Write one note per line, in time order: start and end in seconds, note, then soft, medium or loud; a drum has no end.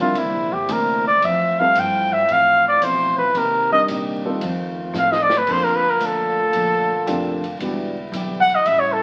0.00 0.15 A#1 medium
0.00 1.20 D3 medium
0.00 0.15 G3 medium
0.00 0.16 G3 medium
0.00 0.13 A#3 medium
0.00 0.16 C4 medium
0.00 0.16 D4 medium
0.00 0.16 E4 medium
0.00 0.16 F4 medium
0.00 0.20 F4 medium
0.00 0.16 A#4 medium
0.15 0.34 C2 medium
0.15 0.55 C3 soft
0.15 0.55 E3 medium
0.15 1.22 A#3 medium
0.15 0.55 A#3 medium
0.15 1.20 E4 medium
0.15 0.54 E4 medium
0.15 3.32 C5 medium
0.15 ride medium
0.20 0.56 D4 medium
0.34 0.51 A#1 medium
0.52 0.69 G1 medium
0.52 0.73 G4 medium
0.68 1.21 D2 loud
0.68 1.07 C3 medium
0.68 1.08 E3 medium
0.68 1.08 A#3 medium
0.68 1.08 D4 medium
0.68 1.07 A#4 medium
0.68 hi-hat pedal medium
0.68 ride medium
1.08 1.26 D5 loud
1.21 1.74 F2 medium
1.21 1.60 F2 soft
1.21 1.61 E3 medium
1.21 3.33 A3 medium
1.21 1.62 A3 medium
1.21 3.32 E4 medium
1.21 3.33 F4 medium
1.21 1.61 E5 loud
1.21 ride medium
1.25 1.62 C4 medium
1.59 1.75 G3 medium
1.59 1.75 C4 medium
1.59 1.75 E4 medium
1.59 1.75 F4 medium
1.59 1.75 A4 medium
1.59 1.81 F5 loud
1.75 2.14 F2 medium
1.75 2.27 G2 loud
1.75 2.14 E3 medium
1.75 2.15 A3 medium
1.75 2.15 C4 medium
1.75 2.14 G5 loud
1.75 hi-hat pedal medium
1.75 ride medium
2.13 2.34 E5 loud
2.29 2.67 F2 soft
2.29 2.81 A2 medium
2.29 2.67 E3 soft
2.29 2.68 A3 medium
2.29 2.67 F5 loud
2.29 ride medium
2.33 2.69 C4 medium
2.68 2.85 D5 loud
2.81 3.20 F2 medium
2.81 3.33 B2 loud
2.81 3.20 E3 medium
2.81 3.21 A3 medium
2.81 3.21 C4 medium
2.81 3.18 C5 medium
2.81 hi-hat pedal medium
2.81 ride medium
3.18 3.39 B4 medium
3.33 3.86 C3 medium
3.33 3.73 C3 soft
3.33 5.29 D#3 medium
3.33 4.40 A#3 medium
3.33 3.73 A#3 soft
3.33 5.29 C4 medium
3.33 3.74 D#4 medium
3.33 4.39 G4 medium
3.33 3.74 G4 medium
3.33 ride medium
3.38 3.72 A#4 medium
3.71 4.21 G3 medium
3.71 4.21 C4 medium
3.71 4.21 D4 medium
3.71 4.21 D#4 medium
3.71 4.21 A#4 medium
3.71 3.82 D#5 loud
3.88 4.40 A#2 medium
3.88 4.26 C3 medium
3.88 4.27 A#3 medium
3.88 4.27 D#4 medium
3.88 4.27 G4 medium
3.88 hi-hat pedal medium
3.88 ride medium
4.25 4.40 G3 medium
4.25 4.40 C4 medium
4.25 4.40 D#4 medium
4.25 4.40 F4 medium
4.25 4.40 A4 medium
4.40 4.93 F2 medium
4.40 4.79 F3 medium
4.40 5.29 A3 medium
4.40 4.79 C4 medium
4.40 4.80 D#4 medium
4.40 5.29 F4 medium
4.40 4.80 A4 medium
4.40 ride medium
4.93 5.46 A2 loud
4.93 5.32 F3 medium
4.93 5.32 C4 medium
4.93 5.32 D#4 medium
4.93 5.33 A4 medium
4.93 snare medium
4.93 hi-hat pedal medium
4.98 5.13 F5 medium
5.12 5.24 D#5 medium
5.12 snare medium
5.23 5.39 D5 loud
5.29 snare medium
5.38 5.53 B4 medium
5.46 5.99 F2 medium
5.46 5.84 A#2 soft
5.46 8.63 D3 medium
5.46 5.85 F3 soft
5.46 7.57 A3 medium
5.46 5.86 A3 medium
5.46 7.57 A#3 medium
5.46 5.80 A#3 medium
5.46 5.80 C4 medium
5.46 5.81 D4 medium
5.46 7.57 F4 medium
5.46 5.80 F4 medium
5.46 5.80 A4 medium
5.46 kick medium
5.46 crash medium
5.50 5.86 D4 medium
5.50 5.66 C5 loud
5.64 5.77 A#4 medium
5.76 5.91 B4 loud
5.90 6.07 A#4 medium
6.00 6.52 D2 medium
6.00 6.39 A#2 soft
6.00 6.39 F3 medium
6.00 6.39 A3 medium
6.00 6.40 D4 medium
6.00 hi-hat pedal medium
6.00 ride medium
6.05 7.62 A4 loud
6.53 7.05 A#1 medium
6.53 6.91 A#2 soft
6.53 6.92 F3 soft
6.53 6.92 A3 medium
6.53 6.93 D4 medium
6.53 ride medium
7.06 7.58 F1 medium
7.06 7.44 A#2 medium
7.06 7.44 F3 medium
7.06 7.45 A3 medium
7.06 7.39 A#3 medium
7.06 7.39 C4 medium
7.06 7.39 D4 medium
7.06 7.45 D4 medium
7.06 7.39 F4 medium
7.06 7.39 G4 medium
7.06 hi-hat pedal medium
7.06 ride medium
7.44 ride soft
7.58 8.11 E1 medium
7.58 7.98 E3 soft
7.58 9.03 G3 medium
7.58 7.93 G3 medium
7.58 8.64 B3 medium
7.58 7.93 B3 soft
7.58 7.93 D4 soft
7.58 9.03 E4 medium
7.58 7.93 E4 soft
7.58 7.93 F#4 medium
7.58 ride medium
7.62 7.99 B3 medium
7.62 7.99 D4 medium
7.62 8.00 G4 medium
8.12 8.64 B1 medium
8.12 8.51 E3 medium
8.12 8.51 B3 medium
8.12 8.52 D4 medium
8.12 hi-hat pedal medium
8.12 ride medium
8.16 8.52 G4 medium
8.41 8.57 F#5 loud
8.49 ride soft
8.55 8.68 D#5 loud
8.65 9.03 A1 medium
8.65 9.03 A2 soft
8.65 9.03 C#3 medium
8.65 9.03 G3 soft
8.65 9.03 A3 medium
8.65 9.03 C#4 medium
8.65 8.81 E5 loud
8.65 ride medium
8.71 9.03 E4 medium
8.80 8.94 C#5 medium
8.93 9.03 A4 loud